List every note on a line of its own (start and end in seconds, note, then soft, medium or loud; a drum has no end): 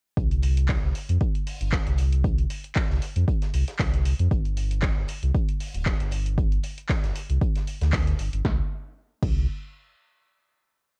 0.17 0.77 C2 medium
0.17 kick loud
0.17 closed hi-hat medium
0.31 closed hi-hat soft
0.43 closed hi-hat medium
0.43 open hi-hat medium
0.57 closed hi-hat soft
0.57 closed hi-hat medium
0.69 kick medium
0.69 snare loud
0.69 clap loud
0.69 closed hi-hat medium
0.83 0.92 C2 medium
0.95 closed hi-hat medium
0.95 open hi-hat loud
1.09 1.18 F2 medium
1.09 closed hi-hat medium
1.21 kick loud
1.21 closed hi-hat medium
1.35 closed hi-hat soft
1.47 open hi-hat medium
1.61 1.79 G1 medium
1.61 closed hi-hat medium
1.72 kick medium
1.72 snare loud
1.72 clap loud
1.87 2.45 C2 medium
1.87 closed hi-hat soft
1.98 closed hi-hat medium
1.98 open hi-hat medium
2.12 closed hi-hat medium
2.24 kick loud
2.24 closed hi-hat medium
2.38 closed hi-hat soft
2.50 closed hi-hat medium
2.50 open hi-hat loud
2.64 closed hi-hat medium
2.75 kick loud
2.75 snare loud
2.75 clap loud
2.75 closed hi-hat medium
2.90 2.99 C2 medium
2.90 snare soft
3.02 closed hi-hat medium
3.02 open hi-hat loud
3.16 3.25 F2 medium
3.16 closed hi-hat medium
3.28 kick loud
3.28 closed hi-hat medium
3.42 snare soft
3.42 closed hi-hat soft
3.54 3.64 C2 medium
3.54 closed hi-hat medium
3.54 open hi-hat loud
3.68 snare medium
3.68 closed hi-hat medium
3.79 4.13 C2 medium
3.79 kick loud
3.79 snare loud
3.79 clap loud
3.79 closed hi-hat medium
3.79 open hi-hat medium
3.94 closed hi-hat soft
4.05 closed hi-hat medium
4.05 open hi-hat loud
4.19 4.28 F2 loud
4.19 closed hi-hat medium
4.31 4.91 G1 loud
4.31 kick loud
4.31 closed hi-hat medium
4.45 closed hi-hat soft
4.57 closed hi-hat medium
4.57 open hi-hat loud
4.71 closed hi-hat medium
4.71 closed hi-hat soft
4.82 kick loud
4.82 snare loud
4.82 clap loud
4.82 closed hi-hat medium
4.97 5.06 G1 loud
5.08 closed hi-hat medium
5.08 open hi-hat loud
5.23 5.32 C2 medium
5.23 closed hi-hat medium
5.35 kick loud
5.35 closed hi-hat medium
5.49 closed hi-hat soft
5.61 open hi-hat loud
5.61 open hi-hat medium
5.75 5.93 D1 medium
5.75 closed hi-hat medium
5.86 kick loud
5.86 snare loud
5.86 clap loud
6.00 6.59 G1 medium
6.00 closed hi-hat soft
6.11 closed hi-hat medium
6.11 open hi-hat loud
6.26 closed hi-hat medium
6.38 kick loud
6.38 closed hi-hat medium
6.52 closed hi-hat soft
6.64 closed hi-hat medium
6.64 open hi-hat loud
6.78 closed hi-hat medium
6.89 kick loud
6.89 snare loud
6.89 clap loud
6.89 closed hi-hat medium
7.03 7.13 G1 loud
7.03 snare soft
7.03 closed hi-hat soft
7.16 closed hi-hat medium
7.16 open hi-hat loud
7.30 7.38 C2 medium
7.30 closed hi-hat medium
7.42 kick loud
7.42 closed hi-hat medium
7.56 snare soft
7.56 closed hi-hat soft
7.67 closed hi-hat medium
7.67 open hi-hat loud
7.81 8.14 D2 medium
7.81 snare medium
7.81 closed hi-hat medium
7.93 kick loud
7.93 snare loud
7.93 clap loud
7.93 closed hi-hat medium
7.93 open hi-hat medium
8.07 closed hi-hat soft
8.19 8.29 G1 medium
8.19 closed hi-hat medium
8.19 open hi-hat loud
8.33 8.42 G1 medium
8.33 closed hi-hat medium
8.45 8.60 C2 medium
8.45 kick loud
8.45 snare medium
9.23 9.47 C2 loud
9.23 kick loud
9.23 crash medium